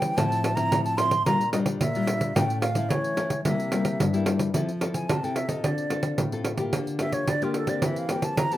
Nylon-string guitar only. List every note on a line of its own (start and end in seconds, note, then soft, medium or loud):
0.00 0.15 E3 medium
0.00 0.13 G3 medium
0.00 0.13 C#4 medium
0.00 0.13 E4 medium
0.17 0.69 A2 medium
0.17 0.54 F3 medium
0.17 0.54 C4 medium
0.17 0.54 E4 medium
0.57 0.94 F3 medium
0.57 0.94 C4 medium
0.57 0.95 E4 medium
0.72 1.24 A2 medium
0.99 1.15 F3 medium
0.99 1.15 C4 medium
0.99 1.16 E4 medium
1.26 1.78 A#2 medium
1.26 1.43 G3 medium
1.26 1.43 D4 medium
1.26 1.43 F4 medium
1.53 1.79 G3 medium
1.53 1.79 D4 medium
1.53 1.79 F4 medium
1.81 2.33 A#2 medium
1.95 2.32 G3 medium
1.95 2.32 D4 medium
1.95 2.32 F4 medium
2.36 2.88 A2 medium
2.36 2.61 A3 medium
2.36 2.62 C#4 medium
2.36 2.62 E4 medium
2.76 3.13 A3 medium
2.76 3.13 C#4 medium
2.76 3.13 E4 medium
2.91 3.42 E3 medium
3.17 3.33 A3 medium
3.17 3.33 C#4 medium
3.17 3.34 E4 medium
3.45 3.97 C3 medium
3.45 3.68 G3 medium
3.45 3.68 A#3 medium
3.45 3.68 E4 medium
3.72 3.98 G3 medium
3.72 3.98 A#3 medium
3.72 3.98 E4 medium
4.00 4.51 G2 medium
4.13 4.50 G3 medium
4.13 4.50 A#3 medium
4.13 4.50 E4 medium
4.54 5.06 F3 medium
4.54 4.70 C4 medium
4.54 4.70 E4 medium
4.54 4.71 A4 medium
4.81 5.07 C4 medium
4.81 5.07 E4 medium
4.81 5.07 A4 medium
5.09 5.61 C3 medium
5.23 5.46 C4 medium
5.23 5.46 E4 medium
5.23 5.46 A4 medium
5.49 5.86 C4 medium
5.49 5.86 F4 medium
5.49 5.86 A4 medium
5.64 6.16 D3 medium
5.90 6.27 C4 medium
5.90 6.27 F4 medium
5.90 6.28 A4 medium
6.18 6.70 A2 medium
6.32 6.55 C4 medium
6.32 6.55 F4 medium
6.32 6.56 A4 medium
6.58 6.95 A#3 medium
6.58 6.95 F4 medium
6.58 6.96 G4 medium
6.73 7.25 D3 medium
7.00 7.26 A#3 medium
7.00 7.26 F4 medium
7.00 7.26 G4 medium
7.28 7.80 D3 medium
7.42 7.65 A#3 medium
7.42 7.65 F4 medium
7.42 7.65 G4 medium
7.67 8.05 A#3 medium
7.67 8.05 C4 medium
7.67 8.05 G4 medium
7.83 8.35 E3 medium
8.10 8.46 A#3 medium
8.10 8.47 C4 soft
8.10 8.47 G4 medium
8.38 8.57 E3 medium
8.52 8.57 A#3 medium
8.52 8.57 C4 medium
8.52 8.57 G4 medium